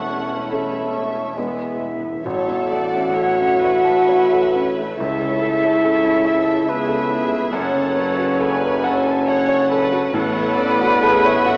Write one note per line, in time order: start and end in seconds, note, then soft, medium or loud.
0.00 1.34 E1 soft
0.00 2.00 E1 soft
0.00 0.90 E2 medium
0.00 1.34 E2 soft
0.00 2.00 E2 soft
0.00 0.48 A3 soft
0.00 1.33 A3 medium
0.00 1.33 C#4 soft
0.00 2.00 E4 soft
0.00 1.33 A4 soft
0.00 0.48 F#5 medium
0.00 0.49 C#6 soft
0.50 1.39 A3 soft
0.50 1.34 A3 soft
0.50 1.34 C#4 soft
0.50 1.35 A4 soft
0.50 1.81 E5 soft
0.50 0.95 B5 soft
0.94 1.36 C#6 soft
1.36 2.23 E1 soft
1.36 1.44 E2 soft
1.36 2.22 E2 soft
1.36 1.99 G#3 soft
1.36 1.92 G#3 soft
1.36 2.21 G#3 soft
1.36 2.00 B3 soft
1.36 2.21 B3 soft
1.36 2.21 E4 medium
1.36 2.00 B4 soft
1.36 2.22 B4 soft
1.36 2.27 E5 medium
1.52 1.58 E2 soft
1.60 1.65 E2 soft
1.66 1.73 E2 soft
1.74 1.80 E2 soft
1.81 1.88 E2 soft
1.89 1.96 E2 soft
1.97 2.03 E2 medium
2.05 2.11 E2 medium
2.12 2.19 E2 medium
2.24 4.93 A1 medium
2.24 4.95 A1 medium
2.24 4.94 A2 medium
2.24 3.59 A2 medium
2.24 4.81 F#4 loud
2.24 3.13 A4 medium
2.24 2.67 C#5 medium
2.24 3.13 E5 soft
2.24 4.69 F#5 medium
2.48 2.85 E2 soft
2.70 3.08 A3 soft
2.70 3.17 D5 medium
2.96 3.32 C#4 soft
3.15 3.54 A4 medium
3.15 3.62 C#5 medium
3.15 4.98 C#5 medium
3.15 4.97 E5 medium
3.40 3.77 C#4 soft
3.61 4.97 B4 medium
3.61 4.00 C#5 medium
3.84 4.21 A5 medium
4.09 4.44 C#5 medium
4.33 4.68 A4 medium
4.55 4.90 C#4 medium
4.79 5.00 A3 medium
4.96 7.51 C#2 medium
4.96 7.52 C#2 medium
4.96 7.53 C#2 medium
4.96 7.51 C#3 medium
4.96 6.66 E4 loud
4.96 6.69 A4 medium
4.96 5.84 C#5 medium
4.96 6.70 E5 loud
4.96 5.85 E5 soft
5.21 5.55 C#3 soft
5.41 5.76 A3 soft
5.64 5.98 E4 medium
5.85 6.19 A4 medium
5.85 6.27 C#5 medium
5.85 7.52 E5 medium
6.05 6.40 E4 medium
6.24 6.60 E5 medium
6.24 6.68 E5 medium
6.45 6.81 A5 medium
6.67 7.56 B3 medium
6.67 7.11 G#4 medium
6.67 7.54 B4 medium
6.67 7.02 E5 medium
6.67 7.53 E5 medium
6.88 7.24 A4 medium
7.10 7.45 E4 medium
7.10 7.54 G#4 medium
7.31 7.54 A3 medium
7.53 9.97 F#1 medium
7.53 10.10 F#1 medium
7.53 10.09 F#2 medium
7.53 10.10 F#2 medium
7.53 10.14 C#4 medium
7.53 8.41 A4 medium
7.53 7.98 C#5 medium
7.53 9.82 C#5 medium
7.53 8.42 F#5 medium
7.74 8.10 C#3 medium
7.96 8.32 C#4 medium
7.96 9.25 B4 medium
8.18 8.53 F#4 medium
8.40 8.75 A4 medium
8.40 8.84 B4 medium
8.40 9.26 G#5 medium
8.62 8.97 C#5 medium
8.84 9.28 A4 medium
8.84 9.19 F#5 medium
9.06 9.41 A5 medium
9.27 10.13 A4 medium
9.27 9.70 C#5 medium
9.27 10.13 F#5 medium
9.27 9.63 F#5 medium
9.49 9.84 C#5 medium
9.71 10.06 A4 medium
9.71 10.13 B4 medium
9.92 10.14 F#4 medium
10.13 11.57 A1 medium
10.13 11.57 A2 medium
10.13 11.41 A2 medium
10.13 11.57 A2 medium
10.13 11.57 B3 loud
10.13 11.02 A4 medium
10.13 11.57 B4 loud
10.13 10.56 C#5 medium
10.13 11.57 F#5 medium
10.36 10.71 A3 medium
10.56 10.93 C#4 medium
10.56 11.01 D5 medium
10.81 11.16 F#4 medium
11.02 11.46 G#4 medium
11.02 11.38 A4 medium
11.02 11.57 E5 medium
11.25 11.57 C#5 medium
11.46 11.57 F#4 medium
11.46 11.57 F#5 medium